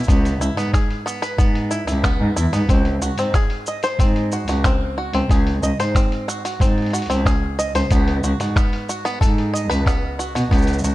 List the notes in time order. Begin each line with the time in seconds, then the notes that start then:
0.03 cabasa
0.08 C#2 B3, kick, open hi-hat, cabasa
0.25 open hi-hat, cabasa
0.40 C#2 E4, cabasa
0.56 G#2 B3, open hi-hat, cabasa
0.73 G#4, finger snap, kick, open hi-hat, cabasa
0.91 open hi-hat
1.06 B3, finger snap, cabasa
1.22 B4, open hi-hat, cabasa
1.38 G#2 B3, kick, open hi-hat, cabasa
1.55 open hi-hat
1.71 E4, cabasa
1.87 C#2 E4, open hi-hat, cabasa
2.04 B3, finger snap, kick, open hi-hat, cabasa
2.20 G#2
2.36 E2 E4, cabasa
2.53 G#2 B3, open hi-hat, cabasa
2.69 C#2 C4, kick, open hi-hat, cabasa
2.85 open hi-hat
3.02 C#2 F#4, cabasa
3.17 G#2 C4, open hi-hat, cabasa
3.34 G#4, finger snap, kick, open hi-hat, cabasa
3.50 open hi-hat
3.66 D#5, cabasa
3.83 C5, open hi-hat, cabasa
3.99 G#2 C4, kick, open hi-hat, cabasa
4.16 open hi-hat
4.32 F#4, cabasa
4.48 C#2 F#4, open hi-hat, cabasa
4.64 C4, finger snap, kick, open hi-hat, cabasa
4.98 F#4
5.13 C#2 C4, open hi-hat
5.30 C#2 G#4, kick, open hi-hat, cabasa
5.47 open hi-hat
5.63 C#2 D#5, cabasa
5.79 G#2 C5, open hi-hat, cabasa
5.95 C4, finger snap, kick, open hi-hat, cabasa
6.12 open hi-hat
6.28 F#4, finger snap, cabasa
6.45 F#4, open hi-hat, cabasa
6.60 G#2 C4, kick, open hi-hat, cabasa
6.78 open hi-hat
6.82 open hi-hat
6.86 open hi-hat
6.90 F#4, open hi-hat
6.94 open hi-hat, cabasa
6.98 open hi-hat
7.02 open hi-hat
7.06 C#2 C4, open hi-hat
7.10 open hi-hat, cabasa
7.26 G#4, finger snap, kick, open hi-hat, cabasa
7.59 D#5, cabasa
7.75 C#2 C5, open hi-hat, cabasa
7.91 C#2 B3, kick, open hi-hat, cabasa
8.08 open hi-hat
8.24 C#2 F#4, cabasa
8.40 G#2 F#4, open hi-hat, cabasa
8.56 B3, finger snap, kick, cabasa
8.73 open hi-hat
8.89 F#4, cabasa
9.05 B3, open hi-hat, cabasa
9.21 G#2 A4, kick, open hi-hat, cabasa
9.38 open hi-hat
9.54 D#5, cabasa
9.70 C#2 B4, open hi-hat, cabasa
9.86 B3, finger snap, kick, open hi-hat, cabasa
10.19 F#4, cabasa
10.35 B2 F#4, open hi-hat, cabasa
10.51 C#2 B3, kick, open hi-hat, cabasa
10.58 cabasa
10.62 cabasa
10.67 open hi-hat, cabasa
10.73 cabasa
10.79 cabasa
10.84 C#2 F#4, cabasa
10.89 cabasa